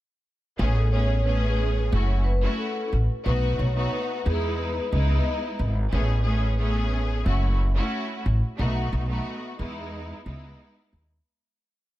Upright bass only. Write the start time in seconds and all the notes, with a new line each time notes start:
0.59 A1
1.92 F#1
2.93 A1
3.26 B1
3.59 B1
4.26 E2
4.92 C#2
5.59 G#1
5.92 A1
7.26 F#1
8.26 A1
8.59 B1
8.93 B1
9.59 E2
10.26 C#2
10.93 D#2